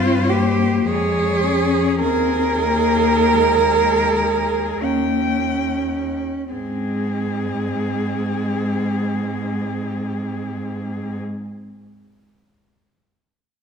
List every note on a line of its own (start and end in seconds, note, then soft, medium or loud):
0.00 0.85 G2 medium
0.00 0.31 C4 medium
0.00 0.30 F4 loud
0.00 0.88 C5 medium
0.29 0.88 A#3 medium
0.29 0.86 G4 medium
0.85 2.03 F2 medium
0.85 1.45 G#3 medium
0.85 1.99 G#4 medium
0.85 2.02 C#5 medium
1.44 2.02 C#4 medium
2.00 4.82 D#2 medium
2.00 2.63 C4 medium
2.00 4.84 G#4 medium
2.00 4.83 A#4 loud
2.64 3.34 A#3 medium
3.32 4.84 G#3 medium
4.82 6.18 D#2 soft
4.82 5.67 A#3 soft
4.82 6.51 C#4 medium
4.82 6.21 G5 medium
6.51 11.17 G#2 medium
6.51 11.17 G#3 soft
6.51 11.16 C4 medium
6.51 11.17 G#4 medium